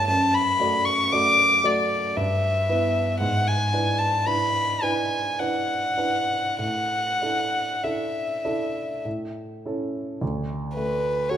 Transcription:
Already playing: grand piano G2 A3 E4 C#5
0.08 grand piano F#2, violin A5
0.34 violin B5
0.60 grand piano A3 F#4 D5
0.85 violin C#6
1.12 grand piano A3 F#4 D5, violin D6
1.64 grand piano A3 F#4 D5, violin D5
2.17 grand piano G2, violin E5
2.69 grand piano B3 E4 B4
3.20 grand piano G#2, violin F#5
3.47 violin G#5
3.73 grand piano D4 E4 B4
3.98 violin A5
4.26 grand piano D4 E4 B4, violin B5
4.82 grand piano D4 E4 B4, violin G#5
5.40 grand piano D4 E4 B4, violin F#5
5.98 grand piano D4 E4 B4
6.59 grand piano A2, violin F#5
7.22 grand piano D4 E4 A4
7.83 grand piano D4 E4 A4, violin E5
8.45 grand piano D4 E4 A4
9.05 grand piano A2
9.66 grand piano C#4 E4 A4
10.21 grand piano D2
10.74 grand piano A3, violin B4
11.29 grand piano F#4 A4, violin C#5

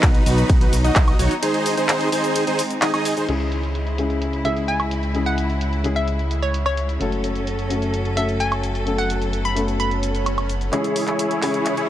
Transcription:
Already playing: string section F#3 B3 D#4, supersaw synth D#4 F#4 B4
0.03 analog synth bass B1, kick, clap, closed hi-hat, ride, cabasa
0.15 closed hi-hat
0.26 analog synth bass B1, supersaw synth D#4 F#4 B4, open hi-hat, cabasa
0.38 closed hi-hat, cabasa
0.50 analog synth bass B1, kick, closed hi-hat, ride, cabasa
0.61 supersaw synth D#4 F#4 B4, closed hi-hat
0.73 analog synth bass B1, open hi-hat, cabasa
0.84 supersaw synth D#4 F#4 D#5, closed hi-hat, cabasa
0.96 analog synth bass B1, kick, clap, closed hi-hat, ride, cabasa, high woodblock
1.08 closed hi-hat, high woodblock
1.19 analog synth bass B1, supersaw synth D#4 F#4 C#5, open hi-hat, cabasa
1.31 closed hi-hat, cabasa
1.42 string section G#3 C4, supersaw synth D#4 G#4 C5, closed hi-hat, ride, cabasa
1.54 closed hi-hat
1.66 open hi-hat, cabasa
1.77 supersaw synth D#4 G#4 C5, closed hi-hat, cabasa
1.89 clap, closed hi-hat, ride, cabasa
2.01 closed hi-hat
2.12 supersaw synth D#4 G#4 C5, open hi-hat, cabasa
2.24 closed hi-hat, cabasa
2.36 closed hi-hat, ride, cabasa
2.47 supersaw synth D#4 G#4 C5, closed hi-hat
2.59 open hi-hat, cabasa
2.70 closed hi-hat, cabasa
2.82 supersaw synth D#4 G#4 D#5, clap, closed hi-hat, ride, cabasa, high woodblock
2.94 supersaw synth D#4 G#4 D#5, closed hi-hat, high woodblock
3.05 open hi-hat, cabasa
3.17 supersaw synth D#4 G#4 C5, closed hi-hat, cabasa
3.27 analog synth bass C#2, grand piano C#3 G#3 C#4 E4 G#4, string section C#3 G#3 E4, closed hi-hat, crash, cabasa
3.40 closed hi-hat
3.52 closed hi-hat, cabasa
3.63 closed hi-hat, cabasa
3.75 closed hi-hat, cabasa
3.87 closed hi-hat
3.98 grand piano C#3 G#3 C#4 E4 G#4, closed hi-hat, cabasa
4.10 closed hi-hat, cabasa
4.22 closed hi-hat, cabasa
4.33 closed hi-hat
4.44 grand piano C#3 G#3 C#4 E4 G#4, synth pluck E5, closed hi-hat, cabasa
4.57 closed hi-hat, cabasa
4.68 synth pluck G#5, closed hi-hat, cabasa
4.80 closed hi-hat, high woodblock
4.91 closed hi-hat, cabasa
5.03 closed hi-hat, cabasa
5.14 grand piano C#3 G#3 C#4 E4 G#4, closed hi-hat, cabasa
5.26 synth pluck F#5, closed hi-hat
5.38 closed hi-hat, cabasa
5.50 closed hi-hat, cabasa
5.61 closed hi-hat, cabasa
5.73 closed hi-hat
5.83 grand piano C#3 G#3 C#4 E4 G#4, closed hi-hat, cabasa
5.96 synth pluck E5, closed hi-hat, cabasa
6.08 closed hi-hat, cabasa
6.19 closed hi-hat
6.31 closed hi-hat, cabasa
6.43 synth pluck C#5, closed hi-hat, cabasa
6.54 closed hi-hat, cabasa
6.66 synth pluck C#5, closed hi-hat, high woodblock
6.77 closed hi-hat, cabasa
6.89 closed hi-hat, cabasa
6.99 analog synth bass F#1, string section F#3 C#4 A4, grand piano A3 C#4 F#4 A4, closed hi-hat, cabasa
7.12 closed hi-hat
7.24 closed hi-hat, cabasa
7.36 closed hi-hat, cabasa
7.47 closed hi-hat, cabasa
7.59 closed hi-hat
7.70 grand piano A3 C#4 F#4 A4, closed hi-hat, cabasa
7.82 closed hi-hat, cabasa
7.94 closed hi-hat, cabasa
8.05 closed hi-hat
8.16 grand piano A3 C#4 F#4 A4, synth pluck E5, closed hi-hat, cabasa
8.29 closed hi-hat, cabasa
8.40 synth pluck G#5, closed hi-hat, cabasa
8.52 closed hi-hat, high woodblock
8.63 closed hi-hat, cabasa
8.75 closed hi-hat, cabasa
8.85 grand piano A3 C#4 F#4 A4, string section B3, closed hi-hat, cabasa
8.98 synth pluck F#5, closed hi-hat
9.10 closed hi-hat, cabasa
9.22 closed hi-hat, cabasa
9.33 closed hi-hat, cabasa
9.45 synth pluck B5, closed hi-hat
9.55 grand piano A3 C#4 F#4 A4, closed hi-hat, cabasa
9.68 closed hi-hat, cabasa
9.80 synth pluck B5, closed hi-hat, swell, cabasa
9.91 closed hi-hat
10.03 closed hi-hat, cabasa
10.15 closed hi-hat, cabasa
10.26 closed hi-hat, cabasa, high woodblock
10.38 closed hi-hat, high woodblock
10.49 closed hi-hat, cabasa
10.61 closed hi-hat, cabasa
10.72 grand piano C#3 G#3 C#4 E4 G#4, string section C#3 G#3 E4, supersaw synth E4 G#4 C#5, clap, closed hi-hat, riser
10.84 closed hi-hat
10.96 open hi-hat
11.08 supersaw synth E4 G#4 C#5, clap, closed hi-hat
11.19 closed hi-hat
11.31 closed hi-hat
11.42 grand piano C#3 G#3 C#4 E4 G#4, supersaw synth E4 G#4 C#5, clap, open hi-hat
11.54 closed hi-hat
11.66 clap, closed hi-hat
11.77 supersaw synth E4 G#4 C#5, closed hi-hat

